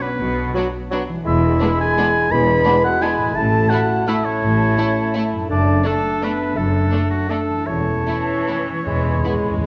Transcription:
0.00 1.19 B2 medium
0.00 1.21 F#3 soft
0.00 0.54 B3 medium
0.00 1.16 D4 soft
0.00 1.21 B4 soft
0.00 0.55 B4 medium
0.20 0.49 B1 medium
0.20 0.50 B2 medium
0.54 0.68 F#3 medium
0.54 0.63 F#3 medium
0.54 0.65 B3 medium
0.54 0.64 D4 medium
0.54 0.68 F#4 medium
0.54 0.62 B5 medium
0.90 1.03 F#3 medium
0.90 0.99 F#3 medium
0.90 1.00 B3 medium
0.90 1.01 D4 medium
0.90 1.04 F#4 medium
0.90 0.98 B5 medium
1.08 3.29 E3 medium
1.13 3.31 G#3 soft
1.17 3.33 D4 soft
1.22 2.27 G#3 medium
1.22 2.27 E4 medium
1.22 3.35 B4 medium
1.22 2.27 B5 medium
1.26 1.55 E1 medium
1.26 1.55 E2 medium
1.26 1.76 E4 medium
1.26 1.76 E5 medium
1.60 1.69 G#3 medium
1.60 1.70 B3 medium
1.60 1.68 D4 medium
1.79 2.31 G#4 medium
1.79 2.33 G#5 loud
1.97 2.05 G#3 medium
1.97 2.06 B3 medium
1.97 2.06 D4 medium
2.31 2.60 E1 medium
2.31 2.60 E2 medium
2.31 3.01 G#3 medium
2.31 3.00 E4 medium
2.31 2.84 B4 medium
2.31 2.84 B5 loud
2.31 3.01 B5 medium
2.65 2.73 G#3 medium
2.65 2.73 B3 medium
2.65 2.74 D4 medium
2.84 3.02 F#4 medium
2.84 3.04 F#5 loud
3.01 3.35 G#3 medium
3.01 3.10 G#3 medium
3.01 3.10 B3 medium
3.01 3.10 D4 medium
3.01 3.34 E4 medium
3.01 3.37 G#4 medium
3.01 3.37 G#5 medium
3.01 3.39 B5 medium
3.18 5.42 A2 medium
3.22 5.35 A3 soft
3.27 5.46 E4 soft
3.31 5.44 A4 medium
3.35 3.64 A1 medium
3.35 3.65 A2 medium
3.35 4.06 A3 medium
3.35 4.05 E4 medium
3.35 3.70 A4 medium
3.35 3.71 A5 loud
3.35 4.07 A5 medium
3.70 3.78 A3 medium
3.70 3.79 A3 soft
3.70 3.79 E4 medium
3.70 4.06 F#4 medium
3.70 4.10 F#5 medium
4.07 5.47 A3 medium
4.07 4.15 A3 medium
4.07 4.16 A3 medium
4.07 5.47 E4 medium
4.07 4.15 E4 medium
4.07 4.16 E4 medium
4.07 4.26 E5 medium
4.07 5.47 A5 medium
4.25 5.31 C#4 medium
4.25 5.32 C#5 medium
4.42 4.71 A1 medium
4.42 4.72 A2 medium
4.77 4.85 A3 soft
4.77 4.87 A3 medium
4.77 4.85 E4 medium
5.14 5.22 A3 soft
5.14 5.23 A3 soft
5.14 5.22 E4 medium
5.32 7.60 F#2 medium
5.36 7.52 A3 soft
5.41 7.65 D4 soft
5.45 5.79 F#1 medium
5.45 7.62 A4 soft
5.49 5.79 F#2 medium
5.49 5.83 A3 soft
5.49 5.84 D4 medium
5.49 5.83 D4 medium
5.49 5.88 D5 medium
5.49 5.85 A5 medium
5.84 6.55 A3 medium
5.84 5.93 A3 soft
5.84 6.22 A3 medium
5.84 5.94 A3 soft
5.84 5.92 D4 soft
5.84 6.55 D4 medium
5.84 6.25 A4 medium
5.84 6.56 A5 medium
6.21 6.30 A3 soft
6.21 6.31 A3 soft
6.21 6.56 B3 medium
6.21 6.30 D4 soft
6.21 6.58 B4 medium
6.55 6.85 F#1 medium
6.55 6.85 F#2 medium
6.55 7.28 A3 medium
6.55 7.10 A3 medium
6.55 7.28 D4 soft
6.55 7.09 A4 medium
6.55 7.29 A5 medium
6.91 6.99 A3 soft
6.91 7.01 A3 soft
6.91 6.99 D4 soft
7.10 7.30 F#3 medium
7.10 7.31 F#4 medium
7.28 7.66 A3 medium
7.28 7.68 A3 medium
7.28 7.38 A3 soft
7.28 7.39 A3 soft
7.28 7.67 D4 soft
7.28 7.37 D4 soft
7.28 7.68 A4 medium
7.28 7.67 A5 soft
7.49 8.67 E2 soft
7.54 8.81 A3 soft
7.58 8.76 E4 soft
7.63 8.56 A3 soft
7.63 9.66 C#4 medium
7.63 8.86 A4 soft
7.63 9.66 C#5 medium
7.67 8.00 E1 soft
7.67 8.00 E2 soft
7.67 8.56 E4 soft
7.67 8.57 A5 medium
8.06 8.82 E3 medium
8.06 8.15 A3 soft
8.06 8.15 E4 soft
8.47 8.57 A3 soft
8.47 8.55 E4 soft
8.68 9.66 E2 soft
8.73 9.66 G#3 soft
8.77 9.66 E4 soft
8.82 9.24 E3 soft
8.82 9.66 E4 soft
8.82 9.66 B4 soft
8.86 9.19 E1 soft
8.86 8.93 E2 soft
8.86 9.19 E2 soft
8.86 9.66 G#3 soft
8.86 9.66 B5 medium
8.95 9.00 E2 soft
9.01 9.08 E2 soft
9.09 9.16 E2 soft
9.18 9.23 E2 soft
9.24 9.33 E2 soft
9.24 9.66 G#3 soft
9.24 9.32 B3 soft
9.24 9.32 E4 soft
9.34 9.41 E2 soft
9.43 9.49 E2 soft
9.51 9.57 E2 medium
9.58 9.65 E2 medium

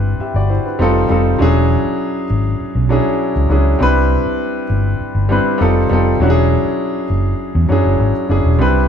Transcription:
0.00 0.13 G1 medium
0.00 0.79 G3 medium
0.00 0.79 C4 medium
0.00 0.66 D4 medium
0.00 0.51 E4 medium
0.00 0.66 B4 loud
0.20 0.35 G4 medium
0.20 0.34 E5 medium
0.20 muted fingered electric bass stroke soft
0.34 0.58 G1 medium
0.34 0.50 F#4 medium
0.34 0.50 D5 medium
0.50 0.65 E4 medium
0.50 0.64 C5 medium
0.66 0.94 D4 soft
0.66 0.94 B4 medium
0.79 1.03 F1 loud
0.79 1.03 G3 medium
0.79 1.04 C4 medium
0.79 1.04 D#4 medium
0.79 1.05 F4 medium
0.79 1.05 A4 loud
1.09 1.33 F1 loud
1.09 1.30 G3 medium
1.09 1.31 C4 medium
1.09 1.31 D#4 medium
1.09 1.31 F4 medium
1.09 1.32 A4 medium
1.39 1.75 E1 loud
1.39 2.23 F#3 loud
1.39 2.23 C#4 medium
1.39 2.23 D4 medium
1.39 2.24 E4 medium
1.39 2.24 G#4 loud
1.85 muted fingered electric bass stroke medium
2.30 2.53 G#1 medium
2.61 muted fingered electric bass stroke soft
2.75 2.98 B1 medium
2.89 3.31 F#3 medium
2.89 3.32 C#4 medium
2.89 3.32 D4 medium
2.89 3.32 E4 medium
2.89 3.33 G#4 medium
3.36 3.47 C#2 medium
3.49 3.73 C#2 loud
3.49 3.70 F#3 medium
3.49 3.71 C#4 medium
3.49 3.71 D4 medium
3.49 3.72 E4 medium
3.49 3.72 G#4 medium
3.79 4.15 C2 loud
3.79 4.63 G3 medium
3.79 4.63 C4 medium
3.79 4.63 D4 medium
3.79 4.64 E4 medium
3.79 4.64 B4 loud
4.25 muted fingered electric bass stroke medium
4.70 4.93 G1 medium
5.01 muted fingered electric bass stroke soft
5.15 5.38 G1 medium
5.29 5.56 G3 medium
5.29 5.57 C4 medium
5.29 5.60 D4 medium
5.29 5.61 E4 medium
5.29 5.61 B4 loud
5.58 5.84 F1 loud
5.58 5.83 G3 loud
5.58 5.83 C4 medium
5.58 5.84 D#4 medium
5.58 5.84 F4 medium
5.58 5.85 A4 loud
5.89 6.14 F1 medium
5.89 6.10 G3 medium
5.89 6.11 C4 medium
5.89 6.11 D#4 medium
5.89 6.12 F4 medium
5.89 6.12 A4 loud
6.20 6.55 E1 loud
6.20 7.03 F#3 medium
6.20 7.04 C#4 medium
6.20 7.04 D4 medium
6.20 7.04 E4 medium
6.20 6.28 F#4 medium
6.30 7.08 G#4 loud
6.65 muted fingered electric bass stroke soft
7.10 7.33 F#1 medium
7.55 7.67 E2 loud
7.69 7.81 F#2 medium
7.69 8.11 F#3 medium
7.69 8.11 C#4 medium
7.69 8.11 D4 medium
7.69 8.12 E4 medium
7.69 8.12 G#4 medium
7.85 7.97 F#1 medium
8.00 8.11 G#1 loud
8.28 8.41 F#1 loud
8.28 8.49 F#3 medium
8.28 8.50 C#4 medium
8.28 8.51 D4 medium
8.28 8.51 E4 medium
8.28 8.51 G#4 medium
8.44 8.56 E1 medium
8.59 8.88 C2 loud
8.59 8.88 G3 medium
8.59 8.88 C4 medium
8.59 8.88 D4 medium
8.59 8.88 E4 medium
8.59 8.88 B4 loud

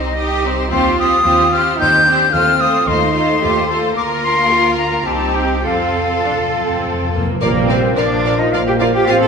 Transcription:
0.00 0.69 C2 medium
0.00 0.18 C4 soft
0.00 0.17 D#4 soft
0.00 0.17 C5 soft
0.00 0.45 D#5 medium
0.17 0.43 D#4 soft
0.17 0.71 G4 medium
0.17 0.43 G4 medium
0.17 0.43 D#5 soft
0.45 0.71 C4 soft
0.45 0.72 D#4 soft
0.45 0.71 C5 medium
0.71 1.17 D#2 medium
0.71 0.97 C4 medium
0.71 1.77 F4 medium
0.71 0.98 G4 medium
0.71 0.98 C5 medium
0.71 0.97 C6 medium
0.99 1.24 C4 soft
0.99 1.24 G4 soft
0.99 1.24 C5 soft
0.99 1.54 D#6 medium
1.25 1.71 D#2 medium
1.25 1.51 C4 medium
1.25 1.51 G4 medium
1.25 1.51 C5 medium
1.52 1.79 C4 medium
1.52 1.78 G4 medium
1.52 1.79 C5 medium
1.52 1.79 F6 medium
1.79 2.25 D#2 medium
1.79 2.05 C4 medium
1.79 2.06 D#4 medium
1.79 2.05 G4 medium
1.79 2.06 C5 medium
1.79 2.34 G6 medium
2.06 2.33 C4 soft
2.06 2.33 D4 medium
2.06 2.33 G4 medium
2.06 2.33 C5 medium
2.33 2.78 D#2 medium
2.33 2.59 A3 medium
2.33 2.86 C4 medium
2.33 2.58 F4 medium
2.33 2.60 C5 medium
2.33 2.62 F6 medium
2.59 2.86 A3 soft
2.59 2.86 F4 medium
2.59 2.87 C5 soft
2.59 2.89 D#6 medium
2.87 3.32 D#2 medium
2.87 3.13 A3 medium
2.87 3.42 D#4 medium
2.87 3.13 F4 medium
2.87 3.14 C5 medium
2.87 3.96 C6 medium
3.14 3.41 A3 medium
3.14 3.40 F4 medium
3.14 3.41 C5 soft
3.41 3.87 D#2 medium
3.41 3.69 A3 medium
3.41 3.68 F4 soft
3.41 3.69 G4 medium
3.41 3.69 C5 medium
3.69 3.96 A3 medium
3.69 3.95 F4 medium
3.69 3.96 A4 medium
3.69 3.96 C5 soft
3.96 5.02 D2 medium
3.96 5.02 A#3 medium
3.96 5.02 F4 medium
3.96 4.49 A#4 medium
3.96 5.03 A#4 medium
3.96 4.02 D6 medium
4.23 4.77 C6 medium
4.50 5.06 F4 medium
4.78 5.08 A#5 medium
5.06 5.64 C2 medium
5.06 5.64 C4 medium
5.06 5.64 D#4 medium
5.06 5.65 G4 medium
5.06 5.37 A5 medium
5.35 5.65 G5 medium
5.65 5.72 F2 soft
5.65 7.21 F2 medium
5.65 6.18 C4 medium
5.65 7.18 F4 medium
5.65 7.13 A4 medium
5.65 7.19 A4 medium
5.65 6.82 F5 medium
5.73 5.80 F2 soft
5.81 5.88 F2 soft
5.89 5.96 F2 soft
5.97 6.05 F2 soft
6.06 6.13 F2 soft
6.14 6.21 F2 soft
6.22 6.29 F2 soft
6.22 6.33 D4 medium
6.30 6.37 F2 soft
6.38 6.45 F2 soft
6.46 6.53 F2 soft
6.54 6.61 F2 soft
6.54 7.12 C4 soft
6.62 6.69 F2 soft
6.70 6.76 F2 medium
6.78 6.84 F2 medium
6.86 6.93 F2 medium
6.94 7.01 F2 medium
7.02 7.08 F2 medium
7.09 7.16 F2 medium
7.14 7.24 F2 medium
7.14 7.41 A#3 soft
7.25 7.31 F2 medium
7.32 7.39 F2 medium
7.41 7.91 A#1 medium
7.41 8.21 A#2 medium
7.41 9.28 F3 medium
7.41 7.93 G3 medium
7.41 7.68 A#3 medium
7.41 9.05 A#3 medium
7.41 9.28 F4 medium
7.41 9.10 A#4 medium
7.41 7.67 A#4 medium
7.41 7.50 A#4 medium
7.41 7.50 D5 medium
7.41 7.49 F5 medium
7.69 7.97 C4 medium
7.69 7.78 A#4 medium
7.69 7.96 C5 medium
7.69 7.78 D5 soft
7.69 7.77 F5 soft
7.97 8.47 A#1 medium
7.97 8.53 F3 medium
7.97 8.38 D4 medium
7.97 8.05 A#4 medium
7.97 8.40 D5 medium
7.97 8.05 D5 soft
7.97 8.06 F5 medium
8.25 8.34 A#4 medium
8.25 8.34 D5 soft
8.25 8.33 F5 soft
8.38 8.53 D#4 medium
8.38 8.54 D#5 medium
8.52 9.02 A#1 medium
8.52 9.08 A#3 medium
8.52 8.59 F4 medium
8.52 8.62 A#4 medium
8.52 8.62 D5 soft
8.52 8.66 F5 medium
8.52 8.62 F5 medium
8.66 8.73 G4 medium
8.66 8.79 G5 medium
8.80 8.86 F4 medium
8.80 8.89 A#4 medium
8.80 8.89 D5 medium
8.80 8.86 F5 medium
8.80 8.88 F5 soft
8.94 9.08 G4 medium
8.94 9.07 G5 medium
9.07 9.28 A1 medium
9.07 9.28 C4 medium
9.07 9.22 F4 medium
9.07 9.16 C5 medium
9.07 9.28 C5 medium
9.07 9.24 F5 medium
9.07 9.16 F5 medium
9.21 9.28 A4 medium
9.21 9.28 A5 medium

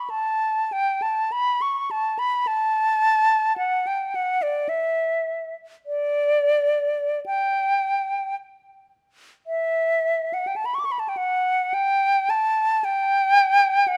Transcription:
0.00 0.11 B5 soft
0.10 0.74 A5 medium
0.72 1.04 G5 medium
1.02 1.34 A5 medium
1.32 1.63 B5 medium
1.62 1.92 C#6 medium
1.91 2.20 A5 medium
2.19 2.49 B5 medium
2.47 3.57 A5 medium
3.58 3.88 F#5 medium
3.87 4.17 G5 medium
4.15 4.44 F#5 medium
4.42 4.70 D5 medium
4.69 5.55 E5 medium
5.86 7.20 D5 medium
7.26 8.35 G5 medium
9.47 10.35 E5 medium
10.34 10.49 F#5 medium
10.47 10.58 G5 soft
10.56 10.67 A5 soft
10.65 10.76 B5 soft
10.75 10.81 C#6 medium
10.79 10.87 D6 soft
10.85 10.93 C#6 soft
10.92 11.01 B5 soft
10.99 11.10 A5 soft
11.09 11.19 G5 soft
11.17 11.75 F#5 medium
11.74 12.31 G5 medium
12.30 12.86 A5 medium
12.84 13.89 G5 medium
13.88 13.97 F#5 medium

